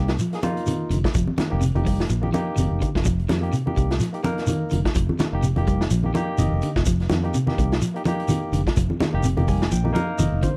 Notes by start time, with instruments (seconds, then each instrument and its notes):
Already playing: fingered electric bass C2, clean electric guitar G3, tine electric piano A#3 D#4 G4
0.08 snare, closed hi-hat
0.19 clean electric guitar F3, closed hi-hat, shekere
0.33 tine electric piano A#3 D#4 G#4, snare, closed hi-hat
0.42 clean electric guitar F3, tine electric piano A#3 D#4 F4, closed hi-hat, high conga, shekere
0.57 closed hi-hat
0.66 clean electric guitar D#3, closed hi-hat, high conga, shekere
0.90 fingered electric bass F1, clean electric guitar D3, closed hi-hat, shekere
1.04 kick, snare, closed hi-hat
1.14 fingered electric bass F1, clean electric guitar F3, kick, closed hi-hat, shekere
1.27 high conga
1.38 clean electric guitar D#3, muted fingered electric bass stroke, snare, closed hi-hat, high conga, shekere
1.50 fingered electric bass F1, tine electric piano A#3 D#4 G4
1.61 clean electric guitar C3, closed hi-hat, shekere
1.75 fingered electric bass F1, tine electric piano A#3 D#4 G4, closed hi-hat, high conga
1.85 clean electric guitar G3, kick, open hi-hat, shekere
2.00 snare
2.09 fingered electric bass A#1, clean electric guitar F3, closed hi-hat, shekere
2.21 tine electric piano A#3 D#4 G4, high conga
2.32 clean electric guitar F3, tine electric piano A#3 D#4 G4, closed hi-hat, high conga, shekere
2.56 fingered electric bass F1, clean electric guitar D#3, closed hi-hat, high conga, shekere
2.71 fingered electric bass F1
2.80 clean electric guitar D3, kick, closed hi-hat, shekere
2.95 fingered electric bass F1, kick, snare, closed hi-hat
3.04 fingered electric bass F1, clean electric guitar F3, kick, closed hi-hat, shekere
3.19 closed hi-hat
3.28 fingered electric bass F2, clean electric guitar D#3, snare, closed hi-hat, high conga, shekere
3.41 tine electric piano A#3 D#4 G4, closed hi-hat
3.53 clean electric guitar C3, closed hi-hat, shekere
3.66 tine electric piano A#3 D#4 G4, high conga
3.76 fingered electric bass C2, clean electric guitar G3, kick, closed hi-hat, shekere
3.91 snare, closed hi-hat
4.00 clean electric guitar F3, snare, closed hi-hat, shekere
4.13 tine electric piano A#3 D#4 G4, closed hi-hat
4.23 clean electric guitar F3, tine electric piano A#3 D#4 A#4, closed hi-hat, high conga, shekere
4.38 snare, closed hi-hat
4.47 clean electric guitar D#3, closed hi-hat, high conga, shekere
4.70 fingered electric bass F1, clean electric guitar D3, closed hi-hat, high conga, shekere
4.85 kick, snare, closed hi-hat
4.95 fingered electric bass F1, clean electric guitar F3, kick, closed hi-hat, shekere
5.09 high conga
5.19 clean electric guitar D#3, muted fingered electric bass stroke, snare, closed hi-hat, high conga, shekere
5.32 fingered electric bass F1, tine electric piano A#3 D#4 G4
5.43 clean electric guitar C3, closed hi-hat, shekere
5.56 fingered electric bass F1, tine electric piano A#3 D#4 G4, closed hi-hat, high conga
5.67 clean electric guitar G3, kick, closed hi-hat, shekere
5.81 snare
5.90 fingered electric bass A#1, clean electric guitar F3, closed hi-hat, shekere
6.03 tine electric piano A#3 D#4 G4, high conga
6.14 clean electric guitar F3, tine electric piano A#3 D#4 G4, closed hi-hat, high conga, shekere
6.38 fingered electric bass F1, clean electric guitar D#3, tine electric piano D#5, closed hi-hat, high conga, shekere
6.52 fingered electric bass F1
6.61 clean electric guitar D3, closed hi-hat, shekere
6.76 fingered electric bass F1, kick, snare, closed hi-hat
6.86 fingered electric bass F1, clean electric guitar F3, kick, closed hi-hat, shekere
7.00 snare, closed hi-hat
7.10 fingered electric bass F2, clean electric guitar D#3, snare, closed hi-hat, high conga, shekere
7.23 tine electric piano A#3 D#4 G4, closed hi-hat
7.34 clean electric guitar C3, closed hi-hat, shekere
7.46 tine electric piano A#3 D#4 G4, snare, high conga
7.58 fingered electric bass C2, kick, closed hi-hat, shekere
7.72 snare, closed hi-hat
7.81 clean electric guitar F3, closed hi-hat, shekere
7.94 tine electric piano A#3 D#4 G4, closed hi-hat
8.05 clean electric guitar F3, tine electric piano A#3 D#4 G4, closed hi-hat, high conga, shekere
8.20 closed hi-hat
8.28 clean electric guitar D#3, closed hi-hat, high conga, shekere
8.52 fingered electric bass F1, clean electric guitar D3, closed hi-hat, shekere
8.67 kick, snare, closed hi-hat
8.77 fingered electric bass F1, clean electric guitar F3, kick, closed hi-hat, shekere
8.90 high conga
9.00 clean electric guitar D#3, muted fingered electric bass stroke, snare, closed hi-hat, high conga, shekere
9.13 fingered electric bass F1, tine electric piano A#3 D#4 G4
9.23 clean electric guitar C3, closed hi-hat, shekere
9.37 fingered electric bass F1, tine electric piano A#3 D#4 G4, closed hi-hat, high conga
9.48 clean electric guitar G3, tine electric piano G#5, kick, open hi-hat, shekere
9.62 snare
9.71 fingered electric bass A#1, clean electric guitar F3, tine electric piano G5, closed hi-hat, shekere
9.83 tine electric piano A#3 D#4 G4, high conga
9.93 clean electric guitar F3, tine electric piano A#3 D#4 A#4 F5, closed hi-hat, high conga, shekere
10.18 fingered electric bass F1, clean electric guitar D#3, tine electric piano D#5, closed hi-hat, high conga, shekere
10.32 fingered electric bass F1
10.42 clean electric guitar D3, tine electric piano C5, kick, closed hi-hat, high conga, shekere